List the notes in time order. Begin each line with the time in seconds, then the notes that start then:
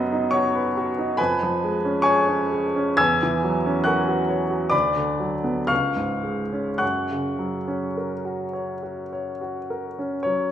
Already playing: F#2 F#3 B3 D#5 B5 D#6
0.13 D#4
0.31 F#4 C#5 C#6
0.55 B4
0.77 F#4
0.99 D#4
1.17 F2 B4 G#5 B5
1.43 F3
1.64 G#3
1.85 C#4
2.02 G#4 C#5 G#5 C#6
2.28 C#4
2.51 G#4
2.76 C#4
2.97 E2 G#5 E6 G#6
3.23 E3
3.44 F#3
3.66 C#4
3.84 A#4 F#5 C#6 F#6
4.08 F#4
4.29 C#5
4.50 F#4
4.70 D2 D5 B5 D6
4.96 D3
5.20 F#3
5.44 B3
5.67 C#2 F5 C#6 F6
5.97 G#2
6.23 G#3
6.53 C#4
6.78 F#2 F#5 C#6 F#6
7.11 C#3
7.39 F#3
7.68 C#4
7.97 A#4
8.25 F#4
8.53 C#5
8.83 F#4
9.13 C#5
9.41 F#4
9.70 A#4
9.99 C#4
10.23 F#3 C#5